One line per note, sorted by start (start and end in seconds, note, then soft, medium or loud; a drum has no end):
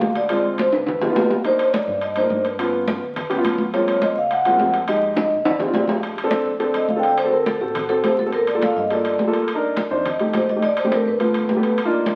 0.00 0.67 D2 medium
0.00 0.19 G#3 medium
0.00 0.19 A#3 medium
0.00 0.19 F#4 medium
0.00 0.13 F5 loud
0.00 high conga medium
0.00 low timbale medium
0.15 0.43 D5 medium
0.15 high conga soft
0.15 high timbale medium
0.29 0.70 G#3 medium
0.29 0.70 C4 medium
0.29 0.70 F4 medium
0.29 high conga soft
0.29 high timbale loud
0.45 high conga soft
0.58 0.65 C5 medium
0.58 high conga medium
0.58 high timbale medium
0.72 1.12 C#2 medium
0.72 1.27 B4 medium
0.72 high timbale medium
0.86 high conga soft
0.86 low conga medium
0.86 high timbale medium
1.01 1.07 B3 medium
1.01 1.07 D#4 medium
1.01 1.07 F4 medium
1.01 high conga soft
1.01 low conga medium
1.01 low timbale medium
1.09 1.34 B3 medium
1.09 1.34 D#4 medium
1.09 1.34 F4 medium
1.15 1.81 C2 medium
1.15 high conga medium
1.15 low timbale loud
1.30 high conga medium
1.30 low timbale medium
1.44 1.85 A#3 medium
1.44 1.85 D4 medium
1.44 1.85 D#4 medium
1.44 1.68 C5 loud
1.44 high conga soft
1.44 high timbale medium
1.59 high conga soft
1.59 high timbale medium
1.67 1.74 C#5 medium
1.74 high conga loud
1.74 high timbale medium
1.87 2.27 G2 medium
1.87 high conga soft
2.01 2.17 D#5 medium
2.01 high conga soft
2.01 high timbale medium
2.16 2.21 A#3 medium
2.16 2.21 D4 medium
2.16 2.22 D#4 medium
2.16 2.43 C5 medium
2.16 high conga soft
2.16 high timbale medium
2.23 2.48 A#3 medium
2.23 2.48 D4 medium
2.23 2.48 D#4 medium
2.30 2.96 G2 loud
2.30 high conga medium
2.45 3.27 B4 medium
2.45 high conga soft
2.45 high timbale medium
2.59 2.99 B3 medium
2.59 2.99 C#4 medium
2.59 2.99 F4 medium
2.59 high conga soft
2.59 high timbale loud
2.74 high conga soft
2.88 high conga loud
2.88 high timbale medium
3.01 3.41 D2 medium
3.16 high conga soft
3.16 low conga medium
3.16 high timbale medium
3.30 3.35 B3 medium
3.30 3.35 C#4 medium
3.30 3.35 G4 medium
3.30 high conga soft
3.30 high timbale medium
3.37 3.63 B3 medium
3.37 3.63 C#4 medium
3.37 3.63 F4 medium
3.44 4.10 F#2 medium
3.44 high conga medium
3.44 high timbale loud
3.58 high conga medium
3.73 4.14 G#3 medium
3.73 4.14 A#3 medium
3.73 4.14 C4 medium
3.73 4.14 F4 medium
3.73 4.03 C#5 loud
3.73 high conga soft
3.73 high timbale medium
3.87 high conga soft
3.87 high timbale medium
4.02 4.17 D#5 loud
4.02 high conga medium
4.02 high timbale medium
4.16 4.56 C#2 medium
4.16 4.31 F5 loud
4.16 high conga soft
4.31 4.72 F#5 loud
4.31 high conga soft
4.31 high timbale medium
4.45 4.50 G#3 medium
4.45 4.50 A#3 medium
4.45 4.51 C4 medium
4.45 4.50 F4 medium
4.45 high conga soft
4.45 high timbale medium
4.52 4.77 G#3 medium
4.52 4.77 A#3 medium
4.52 4.77 C4 medium
4.52 4.77 F4 medium
4.58 5.25 F2 loud
4.58 high conga medium
4.58 low timbale medium
4.74 high conga soft
4.74 high timbale medium
4.88 5.28 G#3 medium
4.88 5.28 D#4 medium
4.88 5.29 G4 medium
4.88 5.15 D#5 loud
4.88 high conga soft
4.88 high timbale loud
5.02 high conga soft
5.16 5.47 D#5 medium
5.16 high conga medium
5.16 high timbale medium
5.30 5.71 A#1 medium
5.45 5.86 D5 medium
5.45 high conga soft
5.45 low conga medium
5.45 high timbale loud
5.59 5.65 C4 medium
5.59 5.65 D4 medium
5.59 5.65 G#4 medium
5.59 high conga soft
5.59 low conga medium
5.59 low timbale medium
5.66 5.92 C4 medium
5.66 5.92 D4 medium
5.66 5.92 F4 medium
5.74 6.40 A#1 medium
5.74 high conga medium
5.74 low timbale loud
5.88 high conga medium
5.88 low timbale medium
6.02 high conga soft
6.02 high timbale medium
6.16 high conga soft
6.16 high timbale medium
6.24 6.49 C4 medium
6.24 6.49 D4 medium
6.24 6.49 A4 loud
6.31 high conga medium
6.31 high timbale medium
6.45 6.85 F2 medium
6.45 high conga soft
6.60 6.85 C4 medium
6.60 6.85 D4 medium
6.60 6.85 A4 medium
6.60 high conga soft
6.60 high timbale medium
6.74 6.89 D#5 medium
6.74 high conga soft
6.74 high timbale medium
6.88 7.55 D2 medium
6.88 6.99 F5 medium
6.88 high conga medium
6.96 7.16 C4 medium
6.96 7.16 D4 medium
6.96 7.16 A4 medium
6.96 7.08 G5 loud
7.03 high conga soft
7.03 high timbale medium
7.08 7.18 D5 medium
7.18 7.32 C5 medium
7.18 high conga soft
7.18 high timbale loud
7.24 7.50 C4 medium
7.24 7.50 F#4 medium
7.24 7.50 A4 medium
7.32 7.46 A#4 medium
7.32 high conga soft
7.46 7.60 A4 medium
7.46 high conga medium
7.46 high timbale medium
7.60 8.01 A1 medium
7.60 7.81 C4 medium
7.60 7.81 F#4 medium
7.60 7.75 G4 medium
7.60 7.81 A4 medium
7.75 7.89 F#4 medium
7.75 high conga soft
7.75 low conga medium
7.75 high timbale loud
7.89 8.15 C4 medium
7.89 8.15 F#4 medium
7.89 8.03 A4 medium
7.89 8.15 A4 medium
7.89 high conga soft
7.89 high timbale medium
8.04 8.70 G1 medium
8.04 8.18 C5 medium
8.04 high conga medium
8.04 high timbale medium
8.04 low timbale medium
8.19 8.33 A4 medium
8.19 high conga medium
8.26 8.33 C4 medium
8.26 8.33 F#4 medium
8.26 8.33 A4 medium
8.32 8.47 A#4 medium
8.32 high conga soft
8.32 high timbale medium
8.47 8.62 D5 medium
8.47 high conga soft
8.47 high timbale medium
8.55 8.80 A#3 medium
8.55 8.80 F4 medium
8.55 8.80 A4 medium
8.62 8.76 F5 loud
8.62 high conga medium
8.62 high timbale medium
8.76 9.16 G2 medium
8.76 8.90 D#5 medium
8.76 high conga soft
8.90 9.16 A#3 medium
8.90 9.16 F4 medium
8.90 9.16 A4 medium
8.90 9.32 D5 medium
8.90 high conga soft
8.90 high timbale medium
9.05 high conga soft
9.05 high timbale medium
9.19 9.85 C2 medium
9.19 high conga medium
9.19 low timbale medium
9.27 9.47 A#3 medium
9.27 9.47 F4 medium
9.27 9.47 A4 medium
9.33 high conga soft
9.33 high timbale medium
9.48 high conga soft
9.48 high timbale loud
9.55 9.80 D4 medium
9.55 9.80 D#4 medium
9.55 9.80 A#4 medium
9.63 high conga soft
9.76 high conga medium
9.76 high timbale medium
9.91 10.31 F2 medium
9.91 10.05 D4 medium
9.91 10.05 D#4 medium
9.91 10.05 C5 medium
10.05 10.20 D#5 medium
10.05 high conga soft
10.05 low conga medium
10.05 high timbale medium
10.19 10.45 A3 medium
10.19 10.45 D#4 medium
10.19 10.45 G4 medium
10.19 10.34 G4 medium
10.19 high conga soft
10.19 high timbale medium
10.33 11.00 A#1 medium
10.33 10.49 C5 medium
10.33 high conga medium
10.33 high timbale medium
10.33 low timbale medium
10.49 10.63 D#5 medium
10.49 high conga medium
10.56 10.63 A3 medium
10.56 10.63 D#4 medium
10.56 10.63 G4 medium
10.62 10.77 D5 medium
10.62 high conga soft
10.62 high timbale medium
10.77 10.91 C5 medium
10.77 high conga soft
10.77 high timbale medium
10.84 11.09 A3 medium
10.84 11.09 C4 medium
10.84 11.10 D4 medium
10.84 11.10 G4 medium
10.92 11.06 A#4 medium
10.92 high conga medium
10.92 high timbale medium
11.06 11.46 G1 loud
11.06 11.75 B4 loud
11.06 high conga soft
11.20 11.45 A3 medium
11.20 11.45 B3 medium
11.20 11.45 F4 medium
11.20 high conga soft
11.20 high timbale medium
11.34 high conga soft
11.34 high timbale medium
11.49 12.15 C2 loud
11.49 high conga medium
11.49 low timbale medium
11.56 11.76 A3 medium
11.56 11.76 B3 medium
11.56 11.76 G4 medium
11.63 high conga soft
11.63 high timbale medium
11.78 high conga soft
11.78 high timbale loud
11.85 12.10 A#3 medium
11.85 12.10 D4 medium
11.85 12.10 D#4 medium
11.85 12.10 F4 medium
11.93 high conga soft
12.06 high conga medium
12.06 high timbale medium